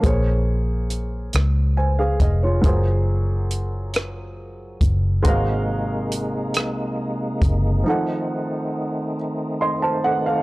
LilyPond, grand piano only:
\new Staff \with { instrumentName = "Grand piano" } { \time 6/8 \key bes \minor \tempo 4. = 46 << { r2 <c'' aes''>16 <aes' f''>16 ees''16 <f' des''>16~ | <f' des''>16 r2 r8. | r2. | r2 <ees'' c'''>16 <c'' a''>16 <a' ges''>16 <a' f''>16 | } \\ { <bes aes' c'' des''>2. | <ges f' aes' bes' c''>2. | <aes ges' bes' c'' f''>2. | <f ees' a' ges''>2. | } >> }